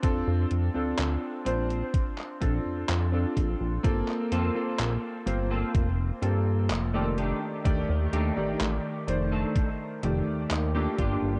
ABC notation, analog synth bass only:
X:1
M:4/4
L:1/16
Q:1/4=63
K:Fmix
V:1 name="Analog synth bass" clef=bass
F,, F,, F,, D,, D,, z B,,,2 z2 B,,, F,, F,,2 B,,, B,,, | G,,, z F,, z B,,, z G,,,2 F,,,2 G,,2 F,,,3 z | E,, E,, E,, A,,, A,,, z F,,,2 z2 F,,, E,, E,,2 G,,, G,,, |]